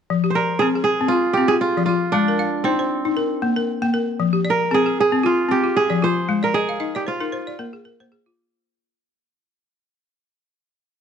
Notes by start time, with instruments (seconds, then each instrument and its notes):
0.10 balafon F3
0.24 balafon G4
0.30 kora C5
0.35 kora A#4, balafon D5
0.59 balafon C4 G#4, kora G#4
0.75 balafon G#4
0.84 kora G#4
1.01 balafon C4
1.08 kora F4, balafon F4
1.33 balafon C4, kora G4
1.48 balafon F4, kora G#4
1.61 kora F4
1.77 balafon F3 D5
1.86 kora F4, balafon F4
2.12 balafon G#3, kora D4
2.28 balafon A#4
2.39 balafon F5
2.64 kora C4, balafon D#4 C5
2.79 balafon C5
3.05 balafon D#4
3.17 balafon A#4
3.42 balafon A#3
3.56 balafon A#4
3.82 balafon A#3 G5
3.94 balafon A#4
4.20 balafon F3
4.33 balafon G4
4.45 balafon D5
4.50 kora A#4
4.71 balafon C4 G#4, kora G#4
4.86 balafon G#4
5.00 kora G#4
5.12 balafon C4
5.23 balafon F4, kora F4
5.49 balafon C4, kora G4
5.64 balafon F4
5.77 kora G#4
5.90 balafon F3 D5
6.02 balafon F4, kora C5
6.29 balafon G#3
6.43 kora A#4, balafon D5
6.54 kora G#4, balafon D#5
6.69 balafon F5
6.80 balafon D#4 D#5
6.95 kora G4, balafon D5
7.07 kora F4, balafon C5
7.20 balafon D#4 A#4
7.32 balafon C5
7.47 balafon D5
7.59 balafon A#3 A#4
7.73 balafon G#4
7.85 balafon A#4
8.00 balafon A#3 C5
8.12 balafon G#4
8.26 balafon F4